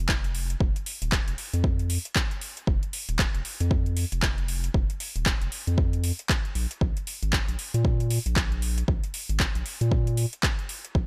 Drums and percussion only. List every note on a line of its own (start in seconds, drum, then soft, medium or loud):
0.09 kick loud
0.09 clap loud
0.24 closed hi-hat soft
0.35 open hi-hat medium
0.50 closed hi-hat medium
0.60 kick loud
0.76 closed hi-hat soft
0.86 open hi-hat loud
1.02 closed hi-hat medium
1.12 kick loud
1.12 clap loud
1.28 closed hi-hat medium
1.38 open hi-hat medium
1.53 closed hi-hat medium
1.64 kick loud
1.79 closed hi-hat soft
1.90 open hi-hat loud
2.05 closed hi-hat medium
2.16 kick loud
2.16 clap loud
2.31 closed hi-hat soft
2.41 open hi-hat medium
2.57 closed hi-hat medium
2.67 kick loud
2.83 closed hi-hat soft
2.93 open hi-hat loud
3.09 closed hi-hat medium
3.19 kick loud
3.19 clap loud
3.35 closed hi-hat medium
3.45 open hi-hat medium
3.60 closed hi-hat medium
3.71 kick loud
3.86 closed hi-hat soft
3.97 open hi-hat loud
4.12 closed hi-hat medium
4.22 kick loud
4.22 clap loud
4.38 closed hi-hat soft
4.48 open hi-hat medium
4.64 closed hi-hat medium
4.74 kick loud
4.90 closed hi-hat soft
5.00 open hi-hat loud
5.16 closed hi-hat medium
5.26 kick loud
5.26 clap loud
5.42 closed hi-hat soft
5.52 open hi-hat medium
5.67 closed hi-hat medium
5.78 kick loud
5.93 closed hi-hat soft
6.04 open hi-hat loud
6.19 closed hi-hat medium
6.29 kick loud
6.29 clap loud
6.45 closed hi-hat soft
6.55 open hi-hat medium
6.71 closed hi-hat medium
6.81 kick loud
6.97 closed hi-hat soft
7.07 open hi-hat loud
7.23 closed hi-hat medium
7.33 kick loud
7.33 clap loud
7.48 closed hi-hat medium
7.59 open hi-hat medium
7.74 closed hi-hat medium
7.85 kick loud
8.00 closed hi-hat soft
8.11 open hi-hat loud
8.26 closed hi-hat medium
8.36 kick loud
8.36 clap loud
8.52 closed hi-hat soft
8.62 open hi-hat medium
8.78 closed hi-hat medium
8.88 kick loud
9.04 closed hi-hat medium
9.14 open hi-hat loud
9.29 closed hi-hat medium
9.40 kick loud
9.40 clap loud
9.55 closed hi-hat medium
9.66 open hi-hat medium
9.81 closed hi-hat medium
9.92 kick loud
10.07 closed hi-hat soft
10.17 open hi-hat loud
10.33 closed hi-hat medium
10.43 kick loud
10.43 clap loud
10.59 closed hi-hat soft
10.69 open hi-hat medium
10.85 closed hi-hat medium
10.95 kick loud